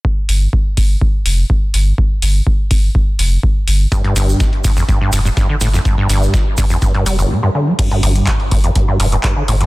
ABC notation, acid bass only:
X:1
M:4/4
L:1/16
Q:1/4=124
K:Cmix
V:1 name="Acid bass" clef=bass
z16 | z16 | G,, G,, G,,2 G,,, z G,, F,, G,, G,, G,, G,, G,, D, A,, F,, | G,, G,, G,,2 G,,, z G,, F,, G,, G,, G, G,,, B,, G,, D, G, |
G,, G,, G,,2 G,,, z G,, F,, G,, G,, G,, G,, G,, D, A,, F,, |]